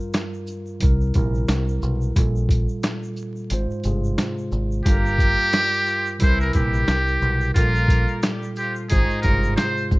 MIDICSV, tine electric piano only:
0, 0, Header, 1, 2, 480
1, 0, Start_track
1, 0, Tempo, 674157
1, 1538, Time_signature, 4, 2, 24, 8
1, 7114, End_track
2, 0, Start_track
2, 0, Title_t, "Tine electric piano"
2, 0, Program_c, 0, 4
2, 0, Control_c, 0, 64, 127
2, 0, Note_on_c, 0, 43, 73
2, 0, Note_on_c, 0, 55, 75
2, 0, Note_on_c, 0, 65, 70
2, 0, Note_on_c, 0, 70, 89
2, 494, Note_off_c, 0, 43, 0
2, 498, Note_off_c, 0, 55, 0
2, 502, Note_off_c, 0, 65, 0
2, 529, Note_off_c, 0, 70, 0
2, 565, Note_on_c, 0, 48, 83
2, 572, Note_on_c, 0, 55, 69
2, 579, Note_on_c, 0, 64, 73
2, 587, Control_c, 0, 64, 0
2, 587, Note_on_c, 0, 70, 91
2, 707, Control_c, 0, 64, 127
2, 791, Note_off_c, 0, 48, 0
2, 794, Note_off_c, 0, 55, 0
2, 798, Note_off_c, 0, 64, 0
2, 802, Note_off_c, 0, 70, 0
2, 821, Note_on_c, 0, 48, 83
2, 828, Note_on_c, 0, 55, 67
2, 836, Note_on_c, 0, 64, 71
2, 843, Note_on_c, 0, 70, 85
2, 1478, Note_off_c, 0, 48, 0
2, 1481, Note_off_c, 0, 55, 0
2, 1485, Note_off_c, 0, 64, 0
2, 1489, Note_off_c, 0, 70, 0
2, 1532, Note_on_c, 0, 46, 79
2, 1539, Note_on_c, 0, 55, 76
2, 1547, Note_on_c, 0, 65, 72
2, 1548, Control_c, 0, 64, 0
2, 1555, Note_on_c, 0, 69, 88
2, 1656, Control_c, 0, 64, 127
2, 2413, Note_off_c, 0, 46, 0
2, 2417, Note_off_c, 0, 55, 0
2, 2420, Note_off_c, 0, 65, 0
2, 2424, Note_off_c, 0, 69, 0
2, 2495, Note_on_c, 0, 44, 84
2, 2502, Note_on_c, 0, 56, 80
2, 2506, Control_c, 0, 64, 0
2, 2509, Note_on_c, 0, 65, 71
2, 2517, Note_on_c, 0, 72, 96
2, 2636, Control_c, 0, 64, 127
2, 2716, Note_off_c, 0, 44, 0
2, 2719, Note_off_c, 0, 56, 0
2, 2723, Note_off_c, 0, 65, 0
2, 2727, Note_off_c, 0, 72, 0
2, 2731, Note_on_c, 0, 48, 81
2, 2739, Note_on_c, 0, 56, 68
2, 2746, Note_on_c, 0, 65, 75
2, 2754, Note_on_c, 0, 68, 82
2, 3393, Note_off_c, 0, 48, 0
2, 3397, Note_off_c, 0, 56, 0
2, 3401, Note_off_c, 0, 65, 0
2, 3404, Note_off_c, 0, 68, 0
2, 3454, Note_on_c, 0, 43, 77
2, 3462, Note_on_c, 0, 55, 74
2, 3467, Control_c, 0, 64, 0
2, 3469, Note_on_c, 0, 65, 72
2, 3477, Note_on_c, 0, 69, 70
2, 3521, Note_off_c, 0, 69, 0
2, 3523, Note_on_c, 0, 70, 89
2, 3604, Control_c, 0, 64, 127
2, 4334, Note_off_c, 0, 43, 0
2, 4338, Note_off_c, 0, 55, 0
2, 4341, Note_off_c, 0, 65, 0
2, 4368, Note_off_c, 0, 70, 0
2, 4405, Note_on_c, 0, 48, 83
2, 4412, Note_on_c, 0, 55, 70
2, 4419, Note_on_c, 0, 64, 78
2, 4426, Control_c, 0, 64, 0
2, 4427, Note_on_c, 0, 70, 92
2, 4534, Control_c, 0, 64, 127
2, 4631, Note_off_c, 0, 48, 0
2, 4634, Note_off_c, 0, 55, 0
2, 4638, Note_off_c, 0, 64, 0
2, 4642, Note_off_c, 0, 70, 0
2, 4661, Note_on_c, 0, 48, 82
2, 4669, Note_on_c, 0, 55, 66
2, 4676, Note_on_c, 0, 64, 70
2, 4683, Note_on_c, 0, 70, 83
2, 5318, Note_off_c, 0, 48, 0
2, 5322, Note_off_c, 0, 55, 0
2, 5325, Note_off_c, 0, 64, 0
2, 5329, Note_off_c, 0, 70, 0
2, 5372, Note_on_c, 0, 46, 80
2, 5379, Note_on_c, 0, 55, 76
2, 5387, Note_on_c, 0, 65, 72
2, 5388, Control_c, 0, 64, 0
2, 5394, Note_on_c, 0, 69, 88
2, 5514, Control_c, 0, 64, 127
2, 6253, Note_off_c, 0, 46, 0
2, 6257, Note_off_c, 0, 55, 0
2, 6260, Note_off_c, 0, 65, 0
2, 6264, Note_off_c, 0, 69, 0
2, 6332, Note_on_c, 0, 44, 86
2, 6340, Note_on_c, 0, 56, 79
2, 6348, Control_c, 0, 64, 0
2, 6348, Note_on_c, 0, 65, 74
2, 6355, Note_on_c, 0, 72, 96
2, 6450, Control_c, 0, 64, 127
2, 6555, Note_off_c, 0, 44, 0
2, 6559, Note_off_c, 0, 56, 0
2, 6562, Note_off_c, 0, 65, 0
2, 6566, Note_off_c, 0, 72, 0
2, 6571, Note_on_c, 0, 48, 83
2, 6579, Note_on_c, 0, 56, 70
2, 6586, Note_on_c, 0, 65, 74
2, 6594, Note_on_c, 0, 68, 81
2, 7114, Note_off_c, 0, 48, 0
2, 7114, Note_off_c, 0, 56, 0
2, 7114, Note_off_c, 0, 65, 0
2, 7114, Note_off_c, 0, 68, 0
2, 7114, End_track
0, 0, End_of_file